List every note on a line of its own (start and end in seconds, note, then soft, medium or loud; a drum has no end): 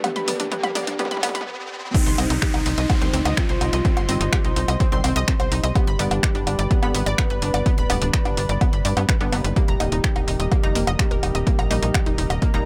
0.00 1.47 C3 medium
0.00 1.43 G3 medium
0.00 1.47 G3 medium
0.00 0.11 B3 medium
0.00 1.43 D4 medium
0.00 1.43 G4 medium
0.00 1.43 B4 loud
0.00 closed hi-hat medium
0.00 mid tom medium
0.00 riser medium
0.00 low woodblock medium
0.04 0.50 G4 loud
0.16 0.27 B5 medium
0.16 closed hi-hat soft
0.16 mid tom medium
0.28 0.50 D3 medium
0.28 0.50 G3 medium
0.28 0.50 B3 loud
0.28 0.39 D5 medium
0.28 open hi-hat loud
0.28 mid tom medium
0.40 0.47 D4 medium
0.40 closed hi-hat medium
0.40 mid tom medium
0.52 0.59 B3 medium
0.52 0.97 G4 loud
0.52 closed hi-hat medium
0.52 mid tom loud
0.63 0.75 B5 medium
0.63 closed hi-hat soft
0.63 mid tom medium
0.63 low woodblock medium
0.75 0.97 D3 medium
0.75 0.97 G3 medium
0.75 0.97 B3 medium
0.75 0.87 D5 medium
0.75 open hi-hat medium
0.75 mid tom loud
0.87 0.95 D4 medium
0.87 closed hi-hat medium
0.87 mid tom medium
0.99 1.21 D3 medium
0.99 1.21 G3 medium
0.99 1.07 B3 medium
0.99 1.21 B3 loud
0.99 1.21 G4 loud
0.99 closed hi-hat medium
0.99 mid tom loud
1.05 mid tom medium
1.11 1.21 B5 medium
1.11 closed hi-hat soft
1.11 mid tom medium
1.17 mid tom medium
1.23 1.45 D3 medium
1.23 1.45 G3 medium
1.23 1.31 B3 medium
1.23 1.45 B3 loud
1.23 open hi-hat loud
1.23 mid tom loud
1.23 low woodblock medium
1.29 mid tom medium
1.35 1.45 B5 medium
1.35 closed hi-hat medium
1.35 mid tom medium
1.41 mid tom medium
1.94 12.65 C3 medium
1.94 12.65 G3 medium
1.94 2.02 C4 medium
1.94 3.39 D#4 loud
1.94 9.52 G4 medium
1.94 5.72 C5 medium
1.94 5.72 D#5 medium
1.94 5.72 C6 loud
1.94 kick loud
1.94 closed hi-hat medium
1.94 downlifter medium
2.06 2.15 C2 medium
2.06 2.18 C6 medium
2.06 closed hi-hat soft
2.18 2.27 C2 loud
2.18 2.99 D#3 medium
2.18 2.99 G3 medium
2.18 2.99 C4 loud
2.18 2.30 D#5 medium
2.18 open hi-hat loud
2.18 low woodblock medium
2.30 2.39 C2 medium
2.30 2.38 D#4 medium
2.30 closed hi-hat medium
2.42 2.47 G4 medium
2.42 finger snap loud
2.42 kick loud
2.42 closed hi-hat medium
2.54 2.63 C2 medium
2.54 2.62 D#4 medium
2.54 closed hi-hat soft
2.54 low woodblock medium
2.66 2.75 C2 loud
2.66 2.77 D#4 medium
2.66 open hi-hat medium
2.78 2.87 C2 medium
2.78 2.89 D#5 medium
2.78 closed hi-hat medium
2.90 2.97 C4 medium
2.90 kick loud
2.90 closed hi-hat medium
2.90 low woodblock medium
3.02 3.10 D2 medium
3.02 4.06 D#3 medium
3.02 4.06 G3 medium
3.02 4.06 C4 loud
3.02 3.13 C6 medium
3.02 closed hi-hat soft
3.13 3.22 D2 loud
3.13 3.21 C4 loud
3.13 open hi-hat loud
3.25 3.34 D2 medium
3.25 3.37 D#5 loud
3.25 closed hi-hat medium
3.25 low woodblock medium
3.37 3.45 C4 medium
3.37 4.71 F4 loud
3.37 finger snap loud
3.37 kick loud
3.37 closed hi-hat medium
3.49 3.58 C2 medium
3.49 3.60 C5 medium
3.49 closed hi-hat soft
3.61 3.70 C2 loud
3.61 3.72 D#4 medium
3.61 open hi-hat loud
3.61 low woodblock medium
3.73 3.82 C2 medium
3.73 3.84 D#5 medium
3.73 closed hi-hat medium
3.85 3.92 C4 medium
3.85 kick loud
3.85 closed hi-hat medium
3.97 4.06 G1 medium
3.97 4.08 C6 medium
3.97 closed hi-hat soft
3.97 low woodblock medium
4.09 4.18 G1 loud
4.09 4.89 D#3 medium
4.09 4.89 G3 medium
4.09 4.89 C4 loud
4.09 4.20 D#5 medium
4.09 open hi-hat loud
4.21 4.30 G1 medium
4.21 4.28 D#4 medium
4.21 closed hi-hat medium
4.33 4.37 G4 medium
4.33 finger snap loud
4.33 kick loud
4.33 closed hi-hat medium
4.33 low woodblock medium
4.44 4.53 C2 medium
4.44 4.52 D#4 medium
4.44 closed hi-hat soft
4.56 4.65 C2 loud
4.56 4.68 D#4 medium
4.56 open hi-hat loud
4.68 4.77 C2 medium
4.68 4.80 D#5 medium
4.68 closed hi-hat medium
4.68 low woodblock soft
4.80 4.88 C4 medium
4.80 kick loud
4.80 closed hi-hat medium
4.92 5.01 C2 medium
4.92 5.74 D#3 medium
4.92 5.74 G3 medium
4.92 5.74 C4 loud
4.92 5.03 C6 medium
4.92 closed hi-hat soft
5.04 5.13 C2 loud
5.04 5.12 C4 loud
5.04 open hi-hat loud
5.04 low woodblock medium
5.16 5.25 C2 medium
5.16 5.27 D#5 loud
5.16 closed hi-hat medium
5.28 5.35 C4 medium
5.28 finger snap loud
5.28 kick loud
5.28 closed hi-hat medium
5.40 5.49 C2 medium
5.40 5.51 C5 medium
5.40 closed hi-hat soft
5.40 low woodblock medium
5.52 5.61 C2 loud
5.52 5.63 D#4 medium
5.52 open hi-hat loud
5.63 5.72 C2 medium
5.63 5.75 D#5 medium
5.63 closed hi-hat medium
5.75 5.83 B3 medium
5.75 7.09 G4 loud
5.75 9.53 B4 medium
5.75 9.53 D5 medium
5.75 9.53 B5 loud
5.75 kick loud
5.75 closed hi-hat medium
5.75 low woodblock medium
5.87 5.96 G1 loud
5.87 5.99 B5 medium
5.87 closed hi-hat soft
5.99 6.08 G1 loud
5.99 6.80 D3 medium
5.99 6.80 G3 medium
5.99 6.80 B3 medium
5.99 6.11 D5 medium
5.99 open hi-hat loud
6.11 6.20 G1 medium
6.11 6.19 D4 medium
6.11 closed hi-hat medium
6.11 low woodblock medium
6.23 6.28 G4 medium
6.23 finger snap loud
6.23 kick loud
6.23 closed hi-hat medium
6.35 6.44 G1 medium
6.35 6.42 D4 medium
6.35 closed hi-hat soft
6.47 6.56 G1 loud
6.47 6.58 D4 medium
6.47 open hi-hat loud
6.47 low woodblock soft
6.59 6.68 G1 loud
6.59 6.70 D5 medium
6.59 closed hi-hat medium
6.71 6.78 B3 medium
6.71 kick loud
6.71 closed hi-hat medium
6.83 6.92 G#1 medium
6.83 7.87 D3 loud
6.83 7.87 G3 medium
6.83 7.87 B3 loud
6.83 6.94 B5 medium
6.83 closed hi-hat soft
6.83 low woodblock soft
6.94 7.03 G#1 loud
6.94 7.02 B3 loud
6.94 open hi-hat loud
7.06 7.15 G#1 medium
7.06 7.18 D5 loud
7.06 closed hi-hat medium
7.18 7.26 B3 medium
7.18 8.52 B4 loud
7.18 finger snap loud
7.18 kick loud
7.18 closed hi-hat medium
7.18 low woodblock soft
7.30 7.39 G1 medium
7.30 7.41 B4 medium
7.30 closed hi-hat soft
7.42 7.51 G1 loud
7.42 7.53 D4 medium
7.42 open hi-hat medium
7.54 7.63 G1 medium
7.54 7.65 D5 medium
7.54 closed hi-hat medium
7.54 low woodblock medium
7.66 7.73 B3 medium
7.66 kick loud
7.66 closed hi-hat medium
7.78 7.87 D1 medium
7.78 7.89 B5 medium
7.78 closed hi-hat soft
7.90 7.99 D1 loud
7.90 8.70 D3 medium
7.90 8.70 G3 medium
7.90 8.70 B3 loud
7.90 8.01 D5 medium
7.90 open hi-hat loud
7.90 low woodblock medium
8.02 8.11 D1 medium
8.02 8.09 D4 medium
8.02 closed hi-hat medium
8.13 8.18 G4 medium
8.13 finger snap loud
8.13 kick loud
8.13 closed hi-hat medium
8.25 8.34 G1 medium
8.25 8.33 D4 medium
8.25 closed hi-hat soft
8.25 low woodblock medium
8.37 8.46 G1 loud
8.37 8.49 D4 medium
8.37 open hi-hat loud
8.49 8.58 G1 medium
8.49 8.61 D5 medium
8.49 closed hi-hat medium
8.61 8.69 B3 medium
8.61 kick loud
8.61 closed hi-hat medium
8.61 low woodblock medium
8.73 8.82 G1 medium
8.73 8.84 B5 medium
8.73 closed hi-hat soft
8.85 8.94 G2 loud
8.85 8.92 D5 medium
8.85 open hi-hat loud
8.97 9.06 G2 medium
8.97 9.04 B3 loud
8.97 closed hi-hat medium
8.97 low woodblock medium
9.09 9.16 B4 medium
9.09 finger snap loud
9.09 kick loud
9.09 closed hi-hat medium
9.21 9.30 G1 medium
9.21 9.30 D3 loud
9.21 9.30 G3 medium
9.21 9.30 B3 loud
9.21 9.28 D4 medium
9.21 closed hi-hat soft
9.32 9.41 G1 medium
9.32 9.77 G3 medium
9.32 9.77 A#3 medium
9.32 9.37 B3 loud
9.32 9.77 D#4 loud
9.32 open hi-hat medium
9.32 low woodblock soft
9.44 9.53 G1 medium
9.44 9.49 B4 medium
9.44 closed hi-hat medium
9.56 9.64 A#3 medium
9.56 10.90 G4 loud
9.56 12.65 G4 medium
9.56 12.65 A#4 medium
9.56 12.65 D#5 medium
9.56 12.65 A#5 loud
9.56 kick loud
9.56 closed hi-hat medium
9.68 9.77 D#1 medium
9.68 9.79 A#5 medium
9.68 closed hi-hat soft
9.80 9.89 D#1 loud
9.80 10.61 G3 medium
9.80 10.61 A#3 medium
9.80 10.61 D#4 medium
9.80 9.91 D#5 medium
9.80 open hi-hat loud
9.80 low woodblock medium
9.92 10.01 D#1 medium
9.92 10.00 D#4 medium
9.92 closed hi-hat medium
10.04 10.08 G4 medium
10.04 finger snap loud
10.04 kick loud
10.04 closed hi-hat medium
10.16 10.25 D#1 medium
10.16 10.23 D#4 medium
10.16 closed hi-hat soft
10.16 low woodblock medium
10.28 10.37 D#1 loud
10.28 10.39 D#4 medium
10.28 open hi-hat medium
10.40 10.49 D#1 medium
10.40 10.51 D#5 medium
10.40 closed hi-hat medium
10.52 10.59 A#3 medium
10.52 kick loud
10.52 closed hi-hat medium
10.52 low woodblock medium
10.63 10.72 F1 medium
10.63 11.68 G3 loud
10.63 11.68 A#3 medium
10.63 11.68 D#4 loud
10.63 10.75 A#5 medium
10.63 closed hi-hat soft
10.75 10.84 F1 loud
10.75 10.83 A#3 loud
10.75 open hi-hat loud
10.87 10.96 F1 medium
10.87 10.99 D#5 loud
10.87 closed hi-hat medium
10.87 low woodblock medium
10.99 11.07 A#3 medium
10.99 12.33 G4 loud
10.99 finger snap loud
10.99 kick loud
10.99 closed hi-hat medium
11.11 11.20 D#1 loud
11.11 11.22 A#4 medium
11.11 closed hi-hat soft
11.23 11.32 D#1 loud
11.23 11.34 D#4 medium
11.23 open hi-hat medium
11.23 low woodblock medium
11.35 11.44 D#1 medium
11.35 11.46 D#5 medium
11.35 closed hi-hat medium
11.47 11.54 A#3 medium
11.47 kick loud
11.47 closed hi-hat medium
11.59 11.68 A#1 medium
11.59 11.70 A#5 medium
11.59 closed hi-hat soft
11.59 low woodblock medium
11.71 11.80 A#1 loud
11.71 12.51 G3 medium
11.71 12.51 A#3 medium
11.71 12.51 D#4 loud
11.71 11.82 D#5 medium
11.71 open hi-hat loud
11.83 11.91 A#1 medium
11.83 11.90 D#4 medium
11.83 closed hi-hat medium
11.94 11.99 G4 medium
11.94 finger snap loud
11.94 kick loud
11.94 closed hi-hat medium
11.94 low woodblock medium
12.06 12.15 D#1 medium
12.06 12.14 D#4 medium
12.06 closed hi-hat soft
12.18 12.27 D#1 loud
12.18 12.30 D#4 medium
12.18 open hi-hat medium
12.30 12.39 D#1 loud
12.30 12.41 D#5 medium
12.30 closed hi-hat medium
12.30 low woodblock soft
12.42 12.50 A#3 medium
12.42 kick loud
12.42 closed hi-hat medium
12.54 12.63 D#1 medium
12.54 12.65 G3 loud
12.54 12.65 A#3 medium
12.54 12.65 D#4 loud
12.54 12.65 A#5 medium
12.54 closed hi-hat soft